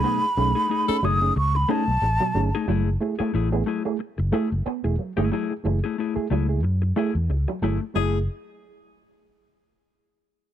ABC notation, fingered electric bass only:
X:1
M:4/4
L:1/16
Q:"Swing 16ths" 1/4=91
K:F#dor
V:1 name="Fingered electric bass" clef=bass
z2 B,,, z3 F,,,2 C,,2 z B,,, A,,, z =G,,, z | F,,,2 z2 A,,,2 z3 F,,, z F,,, z E,,, z =G,,, | z2 F,,, z3 C,,2 F,,2 z E,, C,, z =G,,, z | F,,,2 z12 z2 |]